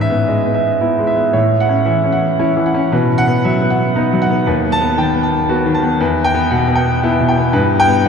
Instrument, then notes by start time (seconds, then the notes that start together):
grand piano
Already playing: G#2 B4
0.01 E5
0.10 B3
0.28 G#3 D#5
0.46 B3
0.54 E5
0.81 B3 E4
0.99 G#3
1.07 E5
1.16 B3
1.33 A2 C#5
1.60 F#5
1.69 C#4
1.85 E3 E5
2.04 C#4
2.12 F#5
2.39 C#4 E4
2.57 E3
2.66 F#5
2.74 C#4
2.92 B2 B4
3.18 F#5
3.27 B3
3.44 F#3 E5
3.61 B3
3.70 F#5
3.96 B3 D#4
4.13 F#3
4.22 F#5
4.30 B3
4.47 D#2 B4
4.72 A5
4.81 B3
4.98 D#3 G5
5.14 B3
5.23 A5
5.49 B3 F#4
5.66 D#3
5.74 A5
5.83 B3
6.00 E2 B4
6.24 G5
6.34 B3
6.51 B2 F#5
6.67 B3
6.75 G5
7.03 B3 E4
7.20 B2
7.28 G5
7.37 B3
7.53 G2 B4
7.80 G5
7.87 B3
8.05 G3 F#5